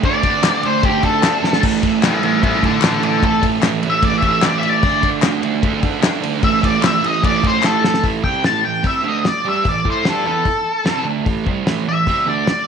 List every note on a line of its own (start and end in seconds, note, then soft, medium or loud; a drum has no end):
0.03 0.43 D3 loud
0.03 0.26 A3 medium
0.03 0.22 D4 medium
0.03 0.62 D5 loud
0.03 kick loud
0.03 ride medium
0.23 0.46 A3 medium
0.23 0.47 D4 medium
0.23 kick medium
0.23 ride medium
0.43 0.66 D3 medium
0.43 0.65 A3 medium
0.43 snare loud
0.43 clap loud
0.43 ride medium
0.48 0.62 D4 medium
0.63 0.85 A3 medium
0.63 0.86 D4 medium
0.63 0.84 C5 loud
0.63 ride medium
0.67 0.82 D3 medium
0.83 1.21 D3 medium
0.83 1.06 A3 medium
0.83 1.01 D4 loud
0.83 1.03 G4 medium
0.83 kick loud
0.83 ride loud
1.02 1.24 A3 medium
1.02 1.24 D4 medium
1.02 1.62 A4 loud
1.02 kick medium
1.02 ride medium
1.23 1.60 D3 medium
1.23 1.46 A3 medium
1.23 1.42 D4 loud
1.23 snare loud
1.23 clap loud
1.23 ride loud
1.43 1.63 A3 medium
1.43 1.62 D4 medium
1.43 snare medium
1.53 snare medium
1.61 2.02 A2 loud
1.61 1.85 E3 medium
1.61 kick loud
1.61 ride loud
1.61 crash loud
1.65 1.82 A3 loud
1.82 2.04 E3 medium
1.82 2.05 A3 medium
1.82 kick medium
1.82 ride medium
2.02 2.24 A2 medium
2.02 2.23 E3 medium
2.02 2.20 A3 medium
2.02 2.23 E4 medium
2.02 snare loud
2.02 clap loud
2.02 ride loud
2.07 2.24 C5 medium
2.21 2.42 E3 medium
2.21 2.44 A3 loud
2.21 2.42 E4 medium
2.21 ride medium
2.25 2.40 A2 medium
2.25 2.43 C5 medium
2.41 2.79 A2 medium
2.41 2.64 E3 loud
2.41 2.60 A3 loud
2.41 2.62 E4 medium
2.41 2.63 C5 medium
2.41 kick loud
2.41 ride loud
2.61 2.81 E3 medium
2.61 2.84 A3 medium
2.61 kick medium
2.61 ride medium
2.65 2.83 A4 medium
2.65 2.84 D5 medium
2.80 3.20 A2 loud
2.80 3.03 E3 medium
2.80 3.00 A3 loud
2.80 3.02 A4 medium
2.80 snare loud
2.80 clap loud
2.80 ride loud
2.85 3.04 D5 medium
3.00 3.25 A3 medium
3.00 ride medium
3.04 3.22 E3 medium
3.04 3.23 A4 medium
3.04 3.24 D5 medium
3.21 3.59 A2 medium
3.21 3.44 E3 medium
3.21 3.41 A3 loud
3.21 3.43 A4 medium
3.21 kick loud
3.21 ride loud
3.41 3.63 A3 medium
3.41 kick medium
3.41 ride medium
3.45 3.61 E3 medium
3.60 3.84 A2 medium
3.60 3.82 E3 medium
3.60 3.81 A3 medium
3.60 snare loud
3.60 clap medium
3.60 ride medium
3.82 4.00 A2 medium
3.82 4.02 E3 medium
3.82 4.04 A3 loud
3.82 ride medium
3.90 4.03 E5 loud
4.01 4.41 A2 medium
4.01 4.25 E3 loud
4.01 4.22 A3 medium
4.01 4.17 D5 loud
4.01 kick loud
4.01 ride loud
4.18 4.30 E5 medium
4.18 ride medium
4.22 4.43 E3 medium
4.22 4.45 A3 medium
4.22 kick medium
4.31 4.43 E5 loud
4.42 4.81 A2 medium
4.42 4.66 E3 loud
4.42 4.63 A3 loud
4.42 4.58 D5 loud
4.42 snare loud
4.42 clap loud
4.42 ride medium
4.58 4.69 E5 medium
4.63 4.84 E3 medium
4.63 4.85 A3 medium
4.63 ride medium
4.69 5.08 D5 loud
4.82 5.21 D3 medium
4.82 5.04 A3 medium
4.82 5.00 D4 loud
4.82 kick loud
4.82 crash medium
5.01 5.23 A3 medium
5.01 5.24 D4 medium
5.01 kick medium
5.01 ride medium
5.22 5.43 D3 medium
5.22 5.43 A3 medium
5.22 5.40 D4 medium
5.22 snare loud
5.22 clap loud
5.22 ride loud
5.41 5.61 D3 medium
5.41 5.63 A3 medium
5.41 5.64 D4 loud
5.41 ride medium
5.62 5.99 D3 loud
5.62 5.85 A3 loud
5.62 5.80 D4 loud
5.62 kick loud
5.62 ride loud
5.81 6.01 A3 medium
5.81 6.02 D4 medium
5.81 kick medium
5.81 ride medium
6.00 6.40 D3 loud
6.00 6.24 A3 medium
6.00 6.20 D4 loud
6.00 snare loud
6.00 clap loud
6.00 ride loud
6.21 6.42 A3 medium
6.21 6.41 D4 medium
6.21 ride medium
6.41 6.79 A2 medium
6.41 6.63 E3 medium
6.41 6.60 A3 loud
6.41 6.63 E5 loud
6.41 kick loud
6.41 ride loud
6.61 6.81 E3 medium
6.61 6.83 A3 medium
6.61 6.83 D5 medium
6.61 kick medium
6.61 ride medium
6.80 7.03 A2 medium
6.80 7.02 E3 medium
6.80 snare loud
6.80 clap medium
6.80 ride loud
6.84 6.99 A3 medium
6.84 7.03 E5 loud
7.00 7.22 E3 medium
7.00 7.24 A3 loud
7.00 ride medium
7.05 7.20 A2 medium
7.05 7.24 D#5 loud
7.21 7.60 A2 medium
7.21 7.44 E3 medium
7.21 7.41 A3 medium
7.21 kick loud
7.21 ride loud
7.25 7.43 D5 loud
7.42 7.62 E3 medium
7.42 7.64 A3 medium
7.42 kick medium
7.42 ride medium
7.47 7.65 C5 medium
7.61 8.01 A2 medium
7.61 7.84 E3 loud
7.61 7.80 A3 loud
7.61 snare medium
7.61 clap medium
7.65 7.84 A4 medium
7.81 8.02 E3 medium
7.81 8.01 A3 medium
7.81 8.04 A4 loud
7.81 snare medium
7.94 snare medium
8.03 8.23 A2 medium
8.03 8.23 E3 medium
8.03 8.23 A3 medium
8.03 kick loud
8.03 open hi-hat soft
8.23 8.43 C3 medium
8.23 8.43 G3 medium
8.23 8.44 C4 loud
8.23 8.43 G5 medium
8.23 kick medium
8.44 8.63 A2 medium
8.44 8.63 E3 medium
8.44 8.64 A3 loud
8.44 8.64 A5 medium
8.44 snare loud
8.44 open hi-hat soft
8.65 8.80 A2 medium
8.65 8.80 E3 medium
8.65 8.84 G5 medium
8.83 9.02 C3 loud
8.83 9.03 G3 loud
8.83 9.04 C4 loud
8.83 9.05 E5 medium
8.83 kick medium
8.83 open hi-hat medium
9.03 9.23 D3 medium
9.03 9.24 A3 medium
9.03 9.23 D4 loud
9.08 9.26 D#5 medium
9.24 9.45 D5 medium
9.24 muted distorted electric guitar stroke medium
9.24 snare loud
9.24 open hi-hat medium
9.45 9.64 G3 medium
9.45 9.64 D4 medium
9.45 9.65 G4 loud
9.49 9.66 E5 medium
9.64 9.81 A2 medium
9.64 9.81 E3 medium
9.64 kick medium
9.64 open hi-hat medium
9.69 9.86 D5 medium
9.85 10.04 A3 medium
9.85 10.05 E4 medium
9.85 10.05 A4 medium
9.85 kick medium
9.90 10.07 C5 medium
10.05 10.24 G3 medium
10.05 10.25 D4 medium
10.05 10.25 G4 medium
10.05 snare loud
10.05 open hi-hat medium
10.10 10.26 A4 medium
10.24 10.44 E3 medium
10.24 10.44 B3 medium
10.24 10.45 E4 loud
10.24 11.04 A4 medium
10.45 muted distorted electric guitar stroke medium
10.45 kick medium
10.45 open hi-hat medium
10.85 11.04 C3 medium
10.85 11.05 G3 medium
10.85 11.06 C4 medium
10.85 snare medium
10.85 open hi-hat medium
11.04 11.24 D3 medium
11.04 11.25 A3 medium
11.04 11.26 D4 medium
11.24 11.45 A2 medium
11.24 11.45 E3 medium
11.24 11.46 A3 medium
11.24 kick loud
11.24 open hi-hat soft
11.45 11.65 C3 medium
11.45 11.66 G3 loud
11.45 11.66 C4 loud
11.45 kick medium
11.66 11.86 A2 medium
11.66 11.86 E3 medium
11.66 11.86 A3 medium
11.66 snare loud
11.66 open hi-hat soft
11.87 12.03 A2 medium
11.87 12.03 E3 medium
11.87 12.27 E5 medium
12.07 12.26 C3 loud
12.07 12.26 G3 loud
12.07 12.27 C4 loud
12.07 kick medium
12.07 open hi-hat medium
12.26 12.46 D3 medium
12.26 12.46 A3 medium
12.26 12.47 D4 medium
12.26 12.48 D5 medium
12.47 12.67 D5 medium
12.47 muted distorted electric guitar stroke medium
12.47 snare loud
12.47 open hi-hat soft